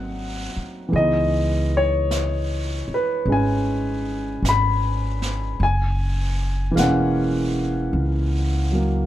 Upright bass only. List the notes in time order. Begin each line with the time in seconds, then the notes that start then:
Already playing: G#1
0.56 muted upright bass stroke
0.93 C#2
2.88 muted upright bass stroke
3.26 G#1
4.42 G#1
5.60 F#1
6.77 E1
7.93 C#2